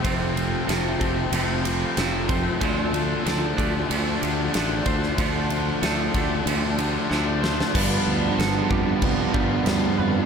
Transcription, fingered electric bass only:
\new Staff \with { instrumentName = "Fingered electric bass" } { \clef bass \time 4/4 \key d \minor \tempo 4 = 94 f,,4 f,,8 f,,8 f,,4 f,,4 | d,4 d,8 d,8 d,8 d,8 a,,8 d,8 | d,4 d,8 d,8 d,4 d,4 | \key g \mixolydian g,,8 d,8 g,,8 f,8 c,8 g,,8 d,8 f,8 | }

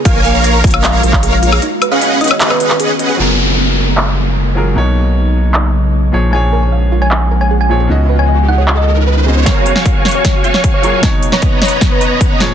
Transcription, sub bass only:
\new Staff \with { instrumentName = "Sub bass" } { \clef bass \time 4/4 \key fis \major \tempo 4 = 153 ais,,8. ais,,8. ais,,4 ais,,4. | r1 | fis,,1 | b,,2.~ b,,8 ais,,8~ |
ais,,1 | cis,1 | r1 | r1 | }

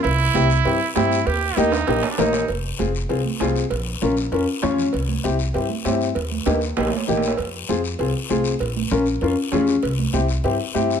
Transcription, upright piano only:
\new Staff \with { instrumentName = "Upright piano" } { \time 4/4 \key f \minor \tempo 4 = 196 r4 <c' e' g'>8 r8 <c' e' g'>8 r8 <c' e' g'>8 r8 | r4 <bes ees' g'>8 r8 <bes ees' g'>8 r8 <bes ees' bes'>8 r8 | r4 <c' f' aes'>8 r8 <c' f' aes'>8 r8 <c' f' aes'>8 r8 | r4 <des' f' bes'>8 r8 <des' f' bes'>8 r8 <des' f' des''>8 r8 |
r4 <c' e' g'>8 r8 <c' e' g'>8 r8 <c' e' g'>8 r8 | r4 <bes ees' g'>8 r8 <bes ees' g'>8 r8 <bes ees' g'>8 r8 | r4 <c' f' aes'>8 r8 <c' f' aes'>8 r8 <c' f' aes'>8 r8 | r4 <des' f' bes'>8 r8 <des' f' bes'>8 r8 <des' f' aes'>8 r8 |
r4 <c' e' g'>8 r8 <c' e' g'>8 r8 <c' e' g'>8 r8 | }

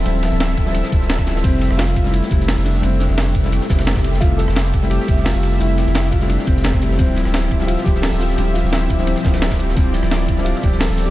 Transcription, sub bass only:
\new Staff \with { instrumentName = "Sub bass" } { \clef bass \time 4/4 \key f \major \tempo 4 = 173 d,,8. d,,8. d,,8. r16 d,,8. d,,8. | f,,8. f,,8. f,,8. r16 f,,8. f,,8. | f,,8. f,,8. f,,8. r16 f,,8. f,,8. | f,,8. f,,8. f,,8. r16 f,,8. f,,8. |
f,,8. f,,8. f,,8. r16 f,,8. f,,8. | d,,8. d,,8. d,,8. r16 d,,8. d,,8. | d,,8. d,,8. d,,8. r16 d,,8. d,,8. | d,,8. d,,8. d,,8. r16 d,,8. d,,8. | }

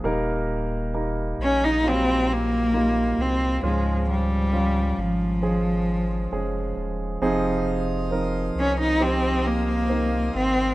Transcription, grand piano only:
<<
  \new Staff \with { instrumentName = "Grand piano" } { \time 4/4 \key f \minor \tempo 4 = 67 <g bes ees' bes'>4 <g bes ees' bes'>4 <ges g bes ees' f'>4 <g bes ees' f'>4 | <f des' f'>4 <f des' f'>4 <f aes des' aes'>4 <f aes des' aes'>4 | <f c' ees' aes'>4 <f c' ees' bes'>4 <f c' ees' g'>4 <f c' ees' bes'>4 | }
  \new Staff \with { instrumentName = "Grand piano" } { \clef bass \time 4/4 \key f \minor bes,4. r2 r8 | aes,4. r2 r8 | c4. r2 r8 | }
>>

